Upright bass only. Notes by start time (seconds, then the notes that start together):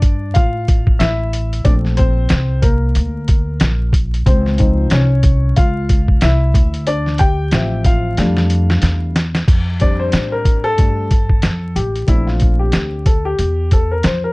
Already playing: G2
0.36 A2
1.00 A1
1.65 A#1
2.32 C2
2.96 D2
3.61 A#1
4.27 C#2
4.91 C2
5.57 C#2
6.22 C2
6.55 D2
7.52 A1
8.18 F2
8.82 E2
9.48 F2
10.13 A2
10.79 G2
11.44 F2
11.76 A1
12.08 A#1
12.74 D2
13.39 E2
14.04 F2